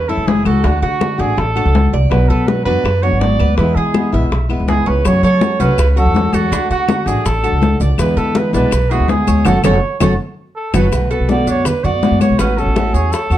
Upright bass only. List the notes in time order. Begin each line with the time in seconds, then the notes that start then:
Already playing: E2
0.17 F#1
0.45 C#2
0.64 D2
0.82 D3
1.19 A1
1.37 A1
1.65 C#2
1.93 C2
2.11 B1
2.30 B2
2.66 F#2
2.84 F#2
3.12 G#1
3.39 D2
3.57 E2
3.76 E3
4.13 B1
4.31 B1
4.60 C#2
4.87 C#2
5.05 F#2
5.23 F#3
5.60 C#2
5.78 C#2
6.05 E2
6.33 E2
6.51 D2
6.70 D3
7.06 A1
7.26 A1
7.52 C#2
7.80 C#2
7.98 E2
8.16 E3
8.53 B1
8.72 B1
8.99 D2
9.28 D2
9.46 F#1
9.64 F#1
10.01 F#1
10.74 F#1
10.91 B1
11.20 B1
11.47 F#2
11.84 F#2
12.11 F#2
12.30 B1
12.39 A1
12.66 A1
12.93 E2
13.30 E2